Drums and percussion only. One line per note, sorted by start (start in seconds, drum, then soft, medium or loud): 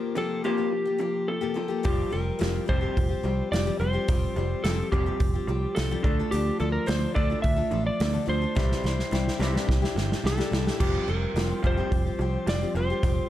1.85 kick loud
1.85 open hi-hat soft
2.41 snare loud
2.41 open hi-hat soft
2.69 kick medium
2.97 kick medium
2.97 open hi-hat soft
3.53 snare loud
3.53 open hi-hat soft
4.08 kick loud
4.08 open hi-hat soft
4.64 snare loud
4.64 open hi-hat soft
4.92 kick medium
5.20 kick loud
5.20 open hi-hat soft
5.76 snare loud
5.76 open hi-hat soft
6.04 kick medium
6.32 open hi-hat soft
6.88 snare loud
6.88 open hi-hat soft
7.16 kick medium
7.44 kick loud
7.44 open hi-hat soft
8.00 snare loud
8.00 open hi-hat soft
8.57 kick loud
8.57 snare medium
8.72 snare medium
8.85 snare medium
8.99 snare soft
9.13 snare medium
9.28 snare medium
9.41 snare medium
9.56 snare medium
9.69 kick medium
9.69 snare medium
9.84 snare medium
9.98 snare medium
10.12 snare medium
10.26 snare medium
10.40 snare medium
10.53 snare loud
10.67 snare medium
10.80 kick loud
10.80 crash medium
11.37 snare loud
11.37 open hi-hat soft
11.64 kick medium
11.92 kick medium
11.92 open hi-hat soft
12.47 snare loud
12.47 open hi-hat soft
13.03 kick loud
13.03 open hi-hat soft